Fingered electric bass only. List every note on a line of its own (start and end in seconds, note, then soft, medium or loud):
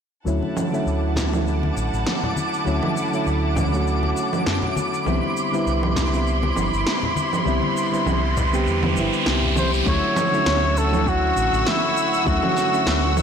0.26 0.38 D2 medium
0.86 1.70 D2 medium
1.76 1.88 A1 medium
1.93 2.03 A1 medium
2.66 2.78 D2 medium
3.26 4.10 D2 medium
4.47 4.58 F#2 medium
5.06 5.18 C2 medium
5.66 6.50 C2 medium
6.56 6.68 G1 medium
6.73 6.83 G1 medium
7.46 7.58 C2 medium
8.06 8.66 C2 medium
8.66 8.98 E2 medium
8.96 9.08 G1 medium
9.26 9.80 C2 medium
9.86 9.98 D2 medium
10.46 11.30 D2 medium
11.36 11.48 A1 medium
11.53 11.62 A1 medium
12.26 12.38 D2 loud
12.86 13.22 D2 medium